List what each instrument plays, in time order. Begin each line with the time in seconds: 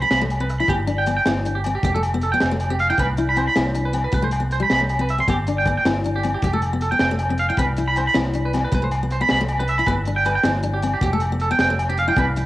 0.02 steel-string acoustic guitar B3, clean electric guitar B5
0.11 fingered electric bass C2, clean electric guitar B5, snare, closed hi-hat, low agogo
0.21 steel-string acoustic guitar A3
0.30 closed hi-hat, low agogo
0.40 steel-string acoustic guitar C4, clean electric guitar B4
0.49 muted clean electric guitar stroke, closed hi-hat
0.60 steel-string acoustic guitar E4, clean electric guitar B5
0.68 fingered electric bass G1, steel-string acoustic guitar B3, clean electric guitar G4, kick, closed hi-hat, low agogo
0.87 steel-string acoustic guitar D4, closed hi-hat
0.98 clean electric guitar G5
1.06 steel-string acoustic guitar B3, closed hi-hat, low agogo
1.17 clean electric guitar G5
1.26 fingered electric bass G1, steel-string acoustic guitar E4, snare, closed hi-hat, low agogo
1.45 steel-string acoustic guitar D4, closed hi-hat
1.55 clean electric guitar G4
1.64 steel-string acoustic guitar C4, closed hi-hat, low agogo
1.75 clean electric guitar G4
1.83 fingered electric bass F1, steel-string acoustic guitar B3, clean electric guitar G4, kick, closed hi-hat
1.94 steel-string acoustic guitar A3, clean electric guitar A4
2.03 closed hi-hat, low agogo
2.14 steel-string acoustic guitar B3
2.21 clean electric guitar A4, closed hi-hat
2.32 steel-string acoustic guitar B3, clean electric guitar G5
2.40 fingered electric bass F1, snare, closed hi-hat, low agogo
2.51 steel-string acoustic guitar A3
2.60 closed hi-hat, low agogo
2.70 steel-string acoustic guitar C4, clean electric guitar G4
2.79 clean electric guitar F5, closed hi-hat
2.90 steel-string acoustic guitar E4, clean electric guitar G5
2.97 fingered electric bass C2, steel-string acoustic guitar C4, clean electric guitar B4, kick, closed hi-hat, low agogo
3.17 steel-string acoustic guitar E4, closed hi-hat
3.29 clean electric guitar B5
3.36 steel-string acoustic guitar C4, clean electric guitar C5, closed hi-hat, low agogo
3.47 clean electric guitar B5
3.56 fingered electric bass C2, steel-string acoustic guitar E4, snare, closed hi-hat, low agogo
3.75 steel-string acoustic guitar D4, closed hi-hat
3.85 clean electric guitar B4
3.93 steel-string acoustic guitar C4, closed hi-hat, low agogo
4.04 clean electric guitar B4
4.12 fingered electric bass C2, steel-string acoustic guitar B3, clean electric guitar B4, kick, closed hi-hat
4.22 steel-string acoustic guitar A3, clean electric guitar C5
4.31 closed hi-hat, low agogo
4.40 steel-string acoustic guitar B3
4.51 clean electric guitar C5, closed hi-hat
4.60 steel-string acoustic guitar G3, clean electric guitar B5
4.70 fingered electric bass C2, clean electric guitar B5, snare, closed hi-hat, low agogo
4.80 steel-string acoustic guitar A3
4.89 closed hi-hat, low agogo
4.99 steel-string acoustic guitar C4, clean electric guitar B4
5.09 clean electric guitar E5, closed hi-hat
5.18 steel-string acoustic guitar C4, clean electric guitar C6
5.28 fingered electric bass G1, steel-string acoustic guitar B3, clean electric guitar G4, kick, closed hi-hat, low agogo
5.47 steel-string acoustic guitar D4, closed hi-hat
5.58 clean electric guitar G5
5.65 steel-string acoustic guitar B3, muted clean electric guitar stroke, kick, closed hi-hat, low agogo
5.78 clean electric guitar G5
5.85 fingered electric bass G1, steel-string acoustic guitar E4, snare, closed hi-hat, low agogo
6.04 steel-string acoustic guitar D4, closed hi-hat
6.16 clean electric guitar G4
6.23 steel-string acoustic guitar C4, closed hi-hat, low agogo
6.34 clean electric guitar G4
6.42 fingered electric bass F1, clean electric guitar G4, muted steel-string acoustic guitar stroke, kick, closed hi-hat
6.53 steel-string acoustic guitar A3, clean electric guitar A4
6.62 closed hi-hat, low agogo
6.73 steel-string acoustic guitar B3
6.81 clean electric guitar A4, closed hi-hat
6.91 steel-string acoustic guitar B3, clean electric guitar G5
6.99 fingered electric bass F1, clean electric guitar G5, snare, closed hi-hat, low agogo
7.11 steel-string acoustic guitar A3
7.19 closed hi-hat, low agogo
7.30 steel-string acoustic guitar C4, muted clean electric guitar stroke
7.38 clean electric guitar F5, closed hi-hat
7.49 steel-string acoustic guitar E4, clean electric guitar G5
7.57 fingered electric bass C2, steel-string acoustic guitar C4, clean electric guitar B4, kick, closed hi-hat, low agogo
7.77 steel-string acoustic guitar E4, closed hi-hat
7.88 clean electric guitar B5
7.96 steel-string acoustic guitar C4, clean electric guitar C5, closed hi-hat, low agogo
8.07 clean electric guitar B5
8.14 fingered electric bass C2, steel-string acoustic guitar E4, snare, closed hi-hat, low agogo
8.33 steel-string acoustic guitar D4, closed hi-hat
8.45 clean electric guitar B4
8.53 steel-string acoustic guitar C4, snare, closed hi-hat, low agogo
8.65 clean electric guitar B4
8.72 fingered electric bass C2, steel-string acoustic guitar B3, clean electric guitar B4, kick, closed hi-hat
8.82 steel-string acoustic guitar A3, clean electric guitar C5
8.91 closed hi-hat, low agogo
9.03 steel-string acoustic guitar B3
9.11 clean electric guitar C5, closed hi-hat
9.21 steel-string acoustic guitar B3, clean electric guitar B5
9.29 fingered electric bass C2, clean electric guitar B5, snare, closed hi-hat, low agogo
9.41 steel-string acoustic guitar A3
9.48 closed hi-hat, low agogo
9.59 steel-string acoustic guitar C4, clean electric guitar B4
9.68 clean electric guitar E5, closed hi-hat
9.78 steel-string acoustic guitar E4, clean electric guitar B5
9.86 fingered electric bass G1, steel-string acoustic guitar B3, clean electric guitar B4, kick, closed hi-hat, low agogo
10.05 steel-string acoustic guitar D4, closed hi-hat
10.16 clean electric guitar G5
10.25 steel-string acoustic guitar B3, clean electric guitar B4, closed hi-hat, low agogo
10.35 clean electric guitar G5
10.44 fingered electric bass G1, steel-string acoustic guitar E4, snare, closed hi-hat, low agogo
10.63 steel-string acoustic guitar D4, closed hi-hat
10.74 clean electric guitar G4
10.82 steel-string acoustic guitar C4, closed hi-hat, low agogo
10.94 clean electric guitar G4
11.01 fingered electric bass F1, steel-string acoustic guitar B3, clean electric guitar G4, kick, closed hi-hat
11.13 steel-string acoustic guitar A3, clean electric guitar A4
11.20 closed hi-hat, low agogo
11.32 steel-string acoustic guitar B3
11.40 clean electric guitar A4, closed hi-hat
11.51 steel-string acoustic guitar B3, clean electric guitar G5
11.59 fingered electric bass F1, clean electric guitar G5, snare, closed hi-hat, low agogo
11.70 steel-string acoustic guitar A3
11.79 closed hi-hat, low agogo
11.89 steel-string acoustic guitar C4, clean electric guitar G4
11.97 clean electric guitar F5, closed hi-hat
12.08 steel-string acoustic guitar E4, clean electric guitar G5
12.16 fingered electric bass C2, steel-string acoustic guitar C4, clean electric guitar B4, kick, closed hi-hat, low agogo
12.36 steel-string acoustic guitar E4, closed hi-hat